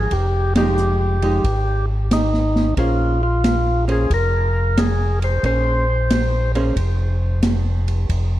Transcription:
0.00 0.14 G#4 medium
0.11 1.40 F1 medium
0.11 0.54 G4 medium
0.11 kick soft
0.11 ride soft
0.56 1.19 F3 medium
0.56 1.19 G#3 medium
0.56 1.19 D#4 medium
0.56 1.86 G4 medium
0.56 1.19 G4 medium
0.56 snare medium
0.56 ride medium
0.78 hi-hat pedal medium
1.22 1.42 F3 medium
1.22 1.43 G#3 medium
1.22 1.43 D#4 medium
1.22 1.43 G4 medium
1.22 ride soft
1.44 2.73 G#1 medium
1.44 kick soft
1.44 ride medium
2.11 2.74 D#4 medium
2.11 snare medium
2.11 hi-hat pedal medium
2.11 ride medium
2.34 snare soft
2.56 snare soft
2.77 4.06 A#1 medium
2.77 3.18 A#3 medium
2.77 3.18 C#4 medium
2.77 3.22 F4 medium
2.77 3.18 G#4 medium
2.77 3.18 C5 medium
2.77 kick soft
2.77 ride medium
3.23 3.85 F4 loud
3.44 snare medium
3.44 hi-hat pedal medium
3.44 ride medium
3.88 4.08 A#3 medium
3.88 4.08 C#4 medium
3.88 4.08 G#4 medium
3.88 4.08 C5 medium
3.88 ride soft
3.92 4.13 G#4 medium
4.10 5.39 F1 medium
4.10 4.81 A#4 loud
4.10 kick soft
4.10 ride medium
4.77 5.19 G#4 medium
4.77 snare medium
4.77 hi-hat pedal soft
4.77 ride medium
5.22 5.45 C5 loud
5.22 ride soft
5.43 6.72 A#1 medium
5.43 5.84 A#3 soft
5.43 5.84 C#4 soft
5.43 5.85 G#4 soft
5.43 6.52 C5 medium
5.43 5.85 C5 medium
5.43 kick soft
5.43 ride soft
6.10 snare medium
6.10 hi-hat pedal medium
6.10 ride medium
6.55 6.75 A#3 medium
6.55 6.75 C#4 medium
6.55 6.75 G#4 medium
6.55 6.75 C5 medium
6.55 ride soft
6.76 8.05 F1 medium
6.76 kick soft
6.76 ride medium
7.43 snare medium
7.43 hi-hat pedal medium
7.43 ride medium
7.88 ride soft
8.09 8.40 F1 medium
8.09 kick soft
8.09 ride medium

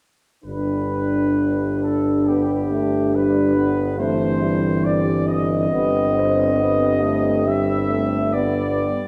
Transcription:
0.44 5.68 G1 soft
0.44 3.95 G3 soft
0.44 3.95 D4 soft
0.44 1.77 B4 soft
1.82 2.27 A4 soft
2.27 2.72 B3 soft
2.27 3.14 G4 soft
2.70 3.16 A3 soft
3.14 3.58 G3 soft
3.14 3.99 B4 medium
3.57 4.01 B3 soft
3.98 5.68 E3 soft
3.98 4.43 A3 soft
3.98 8.30 C4 soft
3.98 4.83 C5 medium
4.42 5.71 G3 soft
4.84 5.28 D5 medium
5.27 7.46 D#5 medium
5.71 8.89 G1 soft
5.71 9.08 G3 soft
5.71 6.17 B3 soft
6.15 6.61 C4 soft
6.59 7.04 B3 soft
7.02 7.46 A3 soft
7.46 7.91 G3 soft
7.46 8.34 E5 medium
7.90 8.35 A3 soft
8.34 8.93 B3 soft
8.34 9.03 B3 soft
8.34 9.08 D5 medium

